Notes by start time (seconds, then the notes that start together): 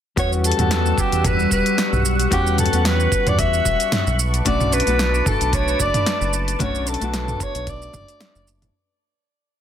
0.16 E2 G3 B3 C#4 F#4 C#5 F#5 C#6 E6, kick, closed hi-hat, shaker
0.33 shaker
0.44 A4, closed hi-hat, shaker
0.52 closed hi-hat
0.57 E2 G3 B3 C#4 F#4, closed hi-hat, mid tom, shaker
0.71 snare, closed hi-hat, shaker
0.86 shaker
0.98 G4, kick, shaker
1.12 E2, closed hi-hat, shaker
1.24 B4, kick, closed hi-hat, mid tom, shaker
1.39 shaker
1.51 E1 B4, kick, shaker
1.66 closed hi-hat, shaker
1.78 snare, closed hi-hat, shaker
1.93 B1, mid tom, shaker
2.05 shaker
2.19 closed hi-hat, shaker
2.30 E2 G3 B3 C#4 F#4 G4 F#6, kick, closed hi-hat, shaker
2.47 shaker
2.58 A4, closed hi-hat, mid tom, shaker
2.66 closed hi-hat
2.71 E2 G3 B3 C#4 F#4, closed hi-hat, shaker
2.85 B4, snare, closed hi-hat, shaker
3.00 shaker
3.12 kick, shaker
3.27 E2 D5, closed hi-hat, mid tom, shaker
3.39 E5, kick, closed hi-hat, shaker
3.54 shaker
3.65 E1, kick, shaker
3.80 closed hi-hat, shaker
3.92 snare, closed hi-hat, mid tom, shaker
4.07 B1, shaker
4.19 B4 A5 D6, shaker
4.34 closed hi-hat, shaker
4.45 B1 A3 C#4 D4 F#4 D5, kick, closed hi-hat, shaker
4.60 mid tom, shaker
4.72 B4, closed hi-hat, shaker
4.80 closed hi-hat
4.86 B1 A3 B3 D4 F#4, closed hi-hat, shaker
4.99 snare, closed hi-hat, shaker
5.14 shaker
5.26 A4, kick, mid tom, shaker
5.41 B1, closed hi-hat, shaker
5.53 C#5, kick, closed hi-hat, shaker
5.68 shaker
5.80 F#1 D5, kick, shaker
5.94 closed hi-hat, mid tom, shaker
6.06 snare, closed hi-hat, shaker
6.21 F#1, shaker
6.33 shaker
6.48 closed hi-hat, shaker
6.59 B1 A3 C#4 D4 F#4 C#5, kick, closed hi-hat, mid tom, shaker
6.75 shaker
6.87 A4, closed hi-hat, shaker
6.94 closed hi-hat
7.00 B1 A3 B3 D4 F#4, closed hi-hat, shaker
7.14 A4, snare, closed hi-hat, shaker
7.28 mid tom, shaker
7.40 C#5, kick, closed hi-hat, shaker
7.55 B1, closed hi-hat, shaker
7.67 D5, kick, closed hi-hat, shaker
7.82 shaker
7.94 F#1, kick, mid tom, shaker
8.08 closed hi-hat, shaker
8.21 snare, closed hi-hat, shaker
8.35 F#1, shaker
8.48 shaker
8.62 closed hi-hat, mid tom, shaker